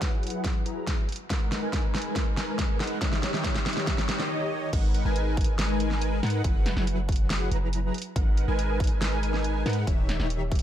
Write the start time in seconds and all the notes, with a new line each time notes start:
Already playing: F#1 F#3 E4 G#4 B4 F#5
0.02 kick, snare, closed hi-hat
0.23 closed hi-hat
0.27 closed hi-hat
0.30 closed hi-hat
0.44 kick, snare, closed hi-hat
0.66 F#1 F#3 E4 G#4 B4 A#5, closed hi-hat
0.87 kick, snare, closed hi-hat
1.09 closed hi-hat
1.12 closed hi-hat
1.16 closed hi-hat
1.30 G#1 G#3 D#4 A#4 B4 F#5, kick, snare, closed hi-hat
1.52 snare, closed hi-hat
1.62 G#1 G#3 D#4 A#4 B4 G#5
1.73 kick, snare, closed hi-hat
1.95 snare, closed hi-hat
1.98 closed hi-hat
2.02 closed hi-hat
2.16 kick, snare, closed hi-hat
2.37 snare, closed hi-hat
2.59 kick, snare, closed hi-hat
2.80 G#2 G#3 D#4 A#4 B4 F#5, snare, closed hi-hat
2.84 closed hi-hat
2.87 closed hi-hat
3.01 D#3 D#4 G4 C#5 E5, kick, snare, closed hi-hat
3.12 snare
3.23 snare, closed hi-hat
3.34 D#3 D#4 G4 C#5 E5, snare
3.44 kick, snare, closed hi-hat
3.55 snare
3.66 snare, closed hi-hat
3.69 closed hi-hat
3.73 snare, closed hi-hat
3.87 kick, snare, closed hi-hat
3.98 snare
4.09 D#3 D#4 G4 C#5 G5, snare, closed hi-hat
4.19 D#3 D#4 G4 C#5 D#5, snare
4.73 G#1 G#3 D#4 A#4 B4 F#5, kick, closed hi-hat, crash
4.94 closed hi-hat
5.05 G#1 G#3 D#4 A#4 B4 G#5
5.16 closed hi-hat
5.37 kick, closed hi-hat
5.41 closed hi-hat
5.44 closed hi-hat
5.59 snare, closed hi-hat
5.80 closed hi-hat
5.91 snare
6.02 closed hi-hat
6.23 G#2 G#3 D#4 A#4 B4 F#5, snare, closed hi-hat
6.27 closed hi-hat
6.30 closed hi-hat
6.44 F#1 F#3 E4 B4, kick, closed hi-hat
6.66 snare, closed hi-hat
6.77 F#1 F#3 E4 G#4 B4 F#5, snare
6.87 closed hi-hat
7.09 kick, closed hi-hat
7.12 closed hi-hat
7.16 closed hi-hat
7.30 snare, closed hi-hat
7.51 F#1 F#3 E4 G#4 B4 A#5, closed hi-hat
7.73 closed hi-hat
7.94 closed hi-hat
7.98 closed hi-hat
8.02 closed hi-hat
8.16 G#1 G#3 D#4 A#4 B4 F#5, kick, closed hi-hat
8.37 closed hi-hat
8.48 G#1 G#3 D#4 A#4 B4 G#5
8.59 closed hi-hat
8.80 kick, closed hi-hat
8.84 closed hi-hat
8.87 closed hi-hat
9.02 snare, closed hi-hat
9.23 closed hi-hat
9.34 snare
9.44 closed hi-hat
9.66 G#2 G#3 D#4 A#4 B4 F#5, snare, closed hi-hat
9.70 closed hi-hat
9.73 closed hi-hat
9.87 D#1 D#3 D#4 G4 C#5 E5, kick, closed hi-hat
10.09 snare, closed hi-hat
10.19 D#1 D#3 D#4 G4 C#5 E5, snare
10.30 closed hi-hat
10.52 kick, closed hi-hat
10.55 closed hi-hat
10.59 closed hi-hat